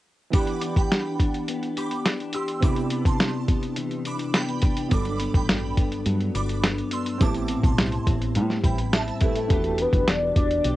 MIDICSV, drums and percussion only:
0, 0, Header, 1, 2, 480
1, 0, Start_track
1, 0, Key_signature, 1, "minor"
1, 0, Tempo, 573066
1, 281, Time_signature, 4, 2, 24, 8
1, 9013, End_track
2, 0, Start_track
2, 0, Title_t, "Drums"
2, 278, Note_on_c, 9, 42, 67
2, 281, Note_on_c, 9, 36, 88
2, 362, Note_off_c, 9, 42, 0
2, 365, Note_off_c, 9, 36, 0
2, 395, Note_on_c, 9, 42, 30
2, 479, Note_off_c, 9, 42, 0
2, 515, Note_on_c, 9, 42, 61
2, 598, Note_off_c, 9, 42, 0
2, 639, Note_on_c, 9, 36, 76
2, 644, Note_on_c, 9, 42, 41
2, 723, Note_off_c, 9, 36, 0
2, 728, Note_off_c, 9, 42, 0
2, 768, Note_on_c, 9, 38, 86
2, 770, Note_on_c, 9, 42, 66
2, 852, Note_off_c, 9, 38, 0
2, 854, Note_off_c, 9, 42, 0
2, 1002, Note_on_c, 9, 36, 77
2, 1004, Note_on_c, 9, 42, 63
2, 1085, Note_off_c, 9, 36, 0
2, 1088, Note_off_c, 9, 42, 0
2, 1125, Note_on_c, 9, 42, 38
2, 1208, Note_off_c, 9, 42, 0
2, 1240, Note_on_c, 9, 42, 72
2, 1324, Note_off_c, 9, 42, 0
2, 1363, Note_on_c, 9, 42, 28
2, 1447, Note_off_c, 9, 42, 0
2, 1482, Note_on_c, 9, 42, 56
2, 1565, Note_off_c, 9, 42, 0
2, 1600, Note_on_c, 9, 42, 39
2, 1684, Note_off_c, 9, 42, 0
2, 1722, Note_on_c, 9, 38, 89
2, 1723, Note_on_c, 9, 42, 75
2, 1806, Note_off_c, 9, 38, 0
2, 1806, Note_off_c, 9, 42, 0
2, 1845, Note_on_c, 9, 42, 28
2, 1929, Note_off_c, 9, 42, 0
2, 1950, Note_on_c, 9, 42, 74
2, 2034, Note_off_c, 9, 42, 0
2, 2077, Note_on_c, 9, 42, 46
2, 2161, Note_off_c, 9, 42, 0
2, 2198, Note_on_c, 9, 42, 69
2, 2200, Note_on_c, 9, 36, 91
2, 2282, Note_off_c, 9, 42, 0
2, 2283, Note_off_c, 9, 36, 0
2, 2314, Note_on_c, 9, 42, 28
2, 2398, Note_off_c, 9, 42, 0
2, 2432, Note_on_c, 9, 42, 65
2, 2515, Note_off_c, 9, 42, 0
2, 2557, Note_on_c, 9, 36, 78
2, 2562, Note_on_c, 9, 42, 43
2, 2641, Note_off_c, 9, 36, 0
2, 2646, Note_off_c, 9, 42, 0
2, 2681, Note_on_c, 9, 38, 93
2, 2683, Note_on_c, 9, 42, 70
2, 2765, Note_off_c, 9, 38, 0
2, 2767, Note_off_c, 9, 42, 0
2, 2918, Note_on_c, 9, 36, 73
2, 2918, Note_on_c, 9, 42, 65
2, 3001, Note_off_c, 9, 36, 0
2, 3002, Note_off_c, 9, 42, 0
2, 3039, Note_on_c, 9, 42, 38
2, 3123, Note_off_c, 9, 42, 0
2, 3152, Note_on_c, 9, 42, 72
2, 3236, Note_off_c, 9, 42, 0
2, 3275, Note_on_c, 9, 42, 29
2, 3359, Note_off_c, 9, 42, 0
2, 3394, Note_on_c, 9, 42, 56
2, 3478, Note_off_c, 9, 42, 0
2, 3513, Note_on_c, 9, 42, 41
2, 3596, Note_off_c, 9, 42, 0
2, 3635, Note_on_c, 9, 38, 90
2, 3636, Note_on_c, 9, 42, 77
2, 3719, Note_off_c, 9, 38, 0
2, 3720, Note_off_c, 9, 42, 0
2, 3758, Note_on_c, 9, 42, 28
2, 3842, Note_off_c, 9, 42, 0
2, 3867, Note_on_c, 9, 42, 70
2, 3875, Note_on_c, 9, 36, 80
2, 3951, Note_off_c, 9, 42, 0
2, 3959, Note_off_c, 9, 36, 0
2, 3993, Note_on_c, 9, 42, 50
2, 4077, Note_off_c, 9, 42, 0
2, 4114, Note_on_c, 9, 42, 71
2, 4117, Note_on_c, 9, 36, 89
2, 4197, Note_off_c, 9, 42, 0
2, 4200, Note_off_c, 9, 36, 0
2, 4231, Note_on_c, 9, 42, 31
2, 4315, Note_off_c, 9, 42, 0
2, 4352, Note_on_c, 9, 42, 63
2, 4436, Note_off_c, 9, 42, 0
2, 4475, Note_on_c, 9, 36, 79
2, 4481, Note_on_c, 9, 42, 42
2, 4559, Note_off_c, 9, 36, 0
2, 4565, Note_off_c, 9, 42, 0
2, 4599, Note_on_c, 9, 38, 92
2, 4601, Note_on_c, 9, 42, 69
2, 4683, Note_off_c, 9, 38, 0
2, 4685, Note_off_c, 9, 42, 0
2, 4836, Note_on_c, 9, 36, 80
2, 4836, Note_on_c, 9, 42, 66
2, 4919, Note_off_c, 9, 42, 0
2, 4920, Note_off_c, 9, 36, 0
2, 4958, Note_on_c, 9, 42, 40
2, 5042, Note_off_c, 9, 42, 0
2, 5074, Note_on_c, 9, 42, 71
2, 5158, Note_off_c, 9, 42, 0
2, 5198, Note_on_c, 9, 42, 28
2, 5281, Note_off_c, 9, 42, 0
2, 5320, Note_on_c, 9, 42, 55
2, 5403, Note_off_c, 9, 42, 0
2, 5439, Note_on_c, 9, 42, 42
2, 5523, Note_off_c, 9, 42, 0
2, 5559, Note_on_c, 9, 38, 93
2, 5560, Note_on_c, 9, 42, 80
2, 5643, Note_off_c, 9, 38, 0
2, 5643, Note_off_c, 9, 42, 0
2, 5682, Note_on_c, 9, 42, 29
2, 5766, Note_off_c, 9, 42, 0
2, 5790, Note_on_c, 9, 42, 72
2, 5874, Note_off_c, 9, 42, 0
2, 5915, Note_on_c, 9, 42, 49
2, 5999, Note_off_c, 9, 42, 0
2, 6037, Note_on_c, 9, 42, 69
2, 6038, Note_on_c, 9, 36, 96
2, 6121, Note_off_c, 9, 36, 0
2, 6121, Note_off_c, 9, 42, 0
2, 6151, Note_on_c, 9, 42, 32
2, 6235, Note_off_c, 9, 42, 0
2, 6268, Note_on_c, 9, 42, 63
2, 6351, Note_off_c, 9, 42, 0
2, 6395, Note_on_c, 9, 36, 81
2, 6400, Note_on_c, 9, 42, 44
2, 6479, Note_off_c, 9, 36, 0
2, 6484, Note_off_c, 9, 42, 0
2, 6520, Note_on_c, 9, 38, 87
2, 6522, Note_on_c, 9, 42, 66
2, 6603, Note_off_c, 9, 38, 0
2, 6606, Note_off_c, 9, 42, 0
2, 6635, Note_on_c, 9, 42, 30
2, 6718, Note_off_c, 9, 42, 0
2, 6758, Note_on_c, 9, 36, 76
2, 6759, Note_on_c, 9, 42, 67
2, 6842, Note_off_c, 9, 36, 0
2, 6843, Note_off_c, 9, 42, 0
2, 6882, Note_on_c, 9, 42, 41
2, 6965, Note_off_c, 9, 42, 0
2, 6995, Note_on_c, 9, 42, 70
2, 7079, Note_off_c, 9, 42, 0
2, 7120, Note_on_c, 9, 38, 29
2, 7204, Note_off_c, 9, 38, 0
2, 7235, Note_on_c, 9, 36, 76
2, 7238, Note_on_c, 9, 42, 57
2, 7319, Note_off_c, 9, 36, 0
2, 7322, Note_off_c, 9, 42, 0
2, 7358, Note_on_c, 9, 42, 43
2, 7442, Note_off_c, 9, 42, 0
2, 7482, Note_on_c, 9, 38, 85
2, 7483, Note_on_c, 9, 42, 81
2, 7566, Note_off_c, 9, 38, 0
2, 7567, Note_off_c, 9, 42, 0
2, 7605, Note_on_c, 9, 42, 30
2, 7688, Note_off_c, 9, 42, 0
2, 7712, Note_on_c, 9, 42, 69
2, 7718, Note_on_c, 9, 36, 82
2, 7795, Note_off_c, 9, 42, 0
2, 7802, Note_off_c, 9, 36, 0
2, 7837, Note_on_c, 9, 42, 49
2, 7920, Note_off_c, 9, 42, 0
2, 7959, Note_on_c, 9, 36, 94
2, 7959, Note_on_c, 9, 42, 73
2, 8042, Note_off_c, 9, 42, 0
2, 8043, Note_off_c, 9, 36, 0
2, 8075, Note_on_c, 9, 42, 31
2, 8158, Note_off_c, 9, 42, 0
2, 8193, Note_on_c, 9, 42, 64
2, 8276, Note_off_c, 9, 42, 0
2, 8316, Note_on_c, 9, 36, 83
2, 8320, Note_on_c, 9, 42, 45
2, 8400, Note_off_c, 9, 36, 0
2, 8404, Note_off_c, 9, 42, 0
2, 8440, Note_on_c, 9, 38, 100
2, 8442, Note_on_c, 9, 42, 69
2, 8524, Note_off_c, 9, 38, 0
2, 8526, Note_off_c, 9, 42, 0
2, 8677, Note_on_c, 9, 36, 80
2, 8678, Note_on_c, 9, 42, 67
2, 8761, Note_off_c, 9, 36, 0
2, 8762, Note_off_c, 9, 42, 0
2, 8801, Note_on_c, 9, 42, 42
2, 8884, Note_off_c, 9, 42, 0
2, 8915, Note_on_c, 9, 42, 74
2, 8999, Note_off_c, 9, 42, 0
2, 9013, End_track
0, 0, End_of_file